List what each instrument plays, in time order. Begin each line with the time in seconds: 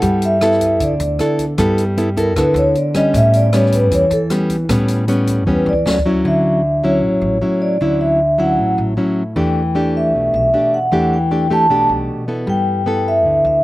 Already playing: nylon-string guitar B3 E4 A4, vibraphone F#5
0.02 upright bass G2, nylon-string guitar G3, kick, closed hi-hat
0.22 vibraphone E5, closed hi-hat
0.41 nylon-string guitar B3 E4 A4, cross-stick, closed hi-hat
0.61 kick, closed hi-hat
0.80 upright bass D2, nylon-string guitar D3, vibraphone D5, kick, closed hi-hat
1.00 upright bass D2, closed hi-hat
1.19 nylon-string guitar B3 E4 A4, cross-stick, closed hi-hat
1.39 kick, closed hi-hat
1.58 upright bass G2, nylon-string guitar G3 B3 E4 A4, kick, cross-stick, closed hi-hat
1.78 closed hi-hat
1.97 nylon-string guitar B3 E4 A4, closed hi-hat
2.17 nylon-string guitar B3 E4 A4, vibraphone A#4, kick, closed hi-hat
2.36 upright bass D2, nylon-string guitar D3 B3 E4 A4, vibraphone B4, kick, cross-stick, closed hi-hat
2.54 upright bass D2, vibraphone C#5, closed hi-hat
2.75 vibraphone D5, closed hi-hat
2.94 nylon-string guitar G3 B3 C#4, vibraphone D#5, kick, cross-stick, closed hi-hat
3.14 upright bass A2, nylon-string guitar A2, vibraphone E5, kick, closed hi-hat
3.33 vibraphone D5, closed hi-hat
3.53 nylon-string guitar G3 B3 C#4, vibraphone C#5, cross-stick, closed hi-hat
3.72 vibraphone B4, kick, closed hi-hat
3.91 upright bass E2, nylon-string guitar E3, vibraphone C#5, kick, closed hi-hat
4.10 upright bass E2, vibraphone A4, closed hi-hat
4.30 nylon-string guitar G3 B3 C#4, cross-stick, closed hi-hat
4.50 kick, closed hi-hat
4.69 nylon-string guitar A2 G3 B3 C#4, upright bass A2, kick, cross-stick, closed hi-hat
4.88 closed hi-hat
5.08 nylon-string guitar G3 B3 C#4, closed hi-hat
5.27 kick, closed hi-hat
5.46 upright bass E2, nylon-string guitar E3 G3 B3 C#4, kick
5.50 vibraphone B4
5.66 upright bass E2, vibraphone D5
5.73 kick
5.86 upright bass D2, nylon-string guitar F#3 A3 C#4, snare
5.99 kick
6.06 nylon-string guitar F#3 C#4 E4
6.25 upright bass D2, nylon-string guitar D3, vibraphone E5
6.84 nylon-string guitar F#3 C#4 E4, vibraphone C#5
7.02 upright bass A1, nylon-string guitar A2
7.21 upright bass A1
7.42 nylon-string guitar F#3 C#4 E4
7.62 vibraphone D5
7.81 upright bass D2, nylon-string guitar D3 F#3 C#4 E4
8.01 vibraphone E5
8.38 nylon-string guitar F#3 C#4 E4, vibraphone F#5
8.58 upright bass A1, nylon-string guitar A2
8.78 upright bass A1
8.97 nylon-string guitar F#3 C#4 E4
9.36 upright bass E2, nylon-string guitar E3 A3 D4 G4, vibraphone G5
9.75 nylon-string guitar A3 D4 G4
9.97 vibraphone E5
10.14 upright bass B1, nylon-string guitar B2
10.34 upright bass B1, vibraphone E5
10.53 nylon-string guitar A3 D4 G4
10.74 vibraphone F#5
10.92 upright bass E2, nylon-string guitar E3 A3 D4 G4
11.13 vibraphone G5
11.31 nylon-string guitar A3 D4 G4, vibraphone G5
11.50 nylon-string guitar A3 D4 G4, vibraphone A5
11.69 upright bass B1, nylon-string guitar B2 A3 D4 G4
11.89 upright bass B1
12.28 nylon-string guitar B3 E4 A4
12.47 upright bass G2, nylon-string guitar G3, vibraphone G5
12.86 nylon-string guitar B3 E4 A4
13.08 vibraphone E5
13.25 upright bass D2, nylon-string guitar D3
13.45 upright bass D2, vibraphone E5